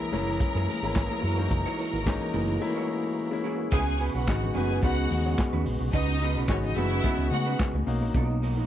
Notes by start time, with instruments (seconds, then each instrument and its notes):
Already playing: tonewheel organ E3 A#3 G#4, grand piano G#3 A#3 C#4 E4, string section A#4 A#5
0.00 muted clean electric guitar stroke
0.12 fingered electric bass F#1, grand piano G#3 A#3 C#4 E4, clean electric guitar E4 G#4 A#4, open hi-hat, high conga, low conga, shaker
0.27 muted clean electric guitar stroke, snare, low conga, shaker
0.39 muted clean electric guitar stroke, kick, closed hi-hat, shaker
0.55 fingered electric bass F#2, clean electric guitar E4 G#4 A#4, shaker
0.68 muted clean electric guitar stroke, open hi-hat, high conga, shaker
0.82 fingered electric bass G#1, grand piano G#3 A#3 C#4 E4, muted clean electric guitar stroke, shaker
0.95 muted clean electric guitar stroke, kick, snare, clap, closed hi-hat, muted conga, shaker
1.09 clean electric guitar E4 G#4 A#4, high conga, shaker
1.21 fingered electric bass F#2, clean electric guitar E4 G#4 C#5, tonewheel organ F#4, open hi-hat
1.37 grand piano G#3 A#3 C#4 D#4, muted clean electric guitar stroke, shaker
1.50 fingered electric bass F#1, muted clean electric guitar stroke, kick, closed hi-hat, muted conga, shaker
1.65 clean electric guitar E4 G#4 C#5, shaker
1.79 clean electric guitar E4 G#4 C#5, open hi-hat, shaker
1.93 fingered electric bass G#1, muted clean electric guitar stroke, shaker
2.06 grand piano G#3 A#3 C#4 D#4, muted clean electric guitar stroke, kick, snare, clap, closed hi-hat, shaker
2.21 muted clean electric guitar stroke, low conga, shaker
2.33 fingered electric bass F#1, clean electric guitar E4 G#4 A#4, open hi-hat, high conga, low conga, shaker
2.48 muted clean electric guitar stroke, low conga, shaker
2.60 grand piano G#3 A3 C#4 E4, muted clean electric guitar stroke
2.67 grand piano A#3
2.77 clean electric guitar E4 G#4 C#5
2.90 muted clean electric guitar stroke
3.04 muted clean electric guitar stroke
3.31 grand piano G#3 A#3 C#4 E4, muted clean electric guitar stroke
3.44 clean electric guitar E4 G#4 A#4
3.60 muted clean electric guitar stroke
3.72 fingered electric bass C#2, tonewheel organ C#3 B3 F#4, clean electric guitar C#4 F#4 B4, string section G#4 G#5, kick, crash, muted conga, shaker
3.87 muted clean electric guitar stroke, muted conga, shaker
4.00 clean electric guitar C#4 F#4 B4, open hi-hat, shaker
4.14 fingered electric bass B1, clean electric guitar C#4 F#4 B4, string section F#4 F#5, shaker
4.27 fingered electric bass G#1, grand piano G#3 B3 D#4 F#4, kick, snare, clap, closed hi-hat, muted conga, shaker
4.42 muted clean electric guitar stroke, low conga, shaker
4.54 fingered electric bass F#1, grand piano G#3 B3 D#4 F#4, clean electric guitar C#4 F#4 B4, string section G#4 G#5, open hi-hat, high conga, low conga
4.70 clean electric guitar C#4 F#4 B4, snare, shaker
4.82 fingered electric bass C#2, grand piano G#3 B3 D#4 F#4, clean electric guitar C#4 F#4 B4, string section F#4 F#5, kick, closed hi-hat, muted conga, shaker
4.97 muted clean electric guitar stroke, shaker
5.11 fingered electric bass D#2, muted clean electric guitar stroke, open hi-hat, high conga, shaker
5.25 clean electric guitar C#4 F#4 C#5, shaker
5.38 muted clean electric guitar stroke, kick, snare, clap, closed hi-hat, shaker
5.53 fingered electric bass D#2, clean electric guitar C#4 F#4 B4, high conga, shaker
5.65 fingered electric bass A#1, muted clean electric guitar stroke, open hi-hat, shaker
5.79 fingered electric bass B1, muted clean electric guitar stroke, shaker
5.93 fingered electric bass C#2, clean electric guitar C#4 F#4 B4, string section D#4 D#5, kick, closed hi-hat, shaker
6.08 muted clean electric guitar stroke, muted conga, shaker
6.21 clean electric guitar C#4 F#4 B4, open hi-hat, shaker
6.35 fingered electric bass B1, clean electric guitar C#4 F#4 B4, shaker
6.48 fingered electric bass G#1, grand piano G#3 B3 D#4 F#4, string section C#4 C#5, muted clean electric guitar stroke, kick, snare, clap, closed hi-hat, muted conga, shaker
6.62 string section D#4 D#5, muted clean electric guitar stroke, low conga, shaker
6.75 fingered electric bass F#1, grand piano G#3 B3 D#4 F#4, clean electric guitar C#4 F#4 B4, string section E4 E5, open hi-hat, high conga, low conga
6.90 clean electric guitar C#4 F#4 B4, snare, shaker
7.03 grand piano G#3 B3 D#4 F#4, clean electric guitar C#4 F#4 C#5, kick, closed hi-hat, muted conga, shaker
7.18 fingered electric bass C#2, muted clean electric guitar stroke, shaker
7.30 fingered electric bass C#3, string section F#4 F#5, muted clean electric guitar stroke, open hi-hat, high conga, shaker
7.46 clean electric guitar C#4 F#4 B4, shaker
7.59 muted clean electric guitar stroke, kick, snare, clap, closed hi-hat, muted conga, shaker
7.73 fingered electric bass C#2, muted clean electric guitar stroke, muted conga, high conga, shaker
7.86 fingered electric bass B1, tonewheel organ B2 A#3 D#4, grand piano A#3 C#4 D#4 F#4, open hi-hat, shaker
8.01 fingered electric bass A#1, muted clean electric guitar stroke, shaker
8.14 fingered electric bass B1, clean electric guitar D#4 F#4 A#4, kick, closed hi-hat, muted conga, shaker
8.29 muted clean electric guitar stroke, muted conga, shaker
8.42 clean electric guitar D#4 F#4 A#4, open hi-hat, shaker
8.57 fingered electric bass A#1, clean electric guitar D#4 F#4 A#4, shaker